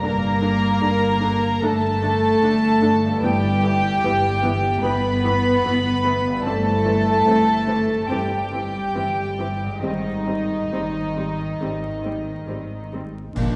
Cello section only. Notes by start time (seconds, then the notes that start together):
0.03 A#3
1.62 A3
3.23 G3
4.83 B3
6.45 A3
8.11 G3
9.82 D#3
13.36 A#2